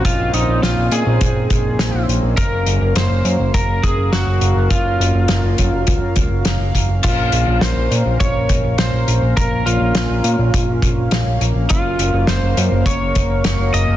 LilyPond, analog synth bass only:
\new Staff \with { instrumentName = "Analog synth bass" } { \clef bass \time 4/4 \key bes \minor \tempo 4 = 103 bes,,16 bes,,16 bes,,16 bes,,16 bes,,16 bes,,16 bes,16 bes,,16 bes,,16 bes,,16 bes,,16 bes,,16 bes,,16 bes,,16 bes,,16 bes,,16 | ges,,16 ges,,16 ges,,16 ges,,16 ges,,16 ges,,16 ges,16 ges,,16 ges,,16 ges,,16 ges,,16 ges,,16 ges,,16 ges,,16 ges,,16 ges,,16 | ges,,16 ges,,16 ges,,16 ges,,16 ges,,16 ges,,16 ges,16 ges,,16 des,16 ges,16 des,16 ges,,16 ges,,16 ges,,16 ges,,16 ges,,16 | bes,,16 bes,,16 bes,,16 bes,,16 bes,,16 bes,,16 bes,16 bes,,16 bes,,16 bes,,16 bes,,16 bes,,16 bes,,16 bes,,16 bes,,16 bes,,16 |
bes,,16 bes,,16 bes,,16 bes,,16 bes,,16 bes,,16 bes,16 bes,,16 bes,,16 bes,,16 bes,,16 bes,,16 bes,,16 bes,,16 bes,,16 bes,,16 | ges,,16 ges,,16 ges,,16 ges,,16 ges,,16 ges,,16 ges,16 ges,,16 ges,,16 ges,,16 ges,,16 ges,,16 ges,,16 ges,,16 ges,,16 ges,,16 | }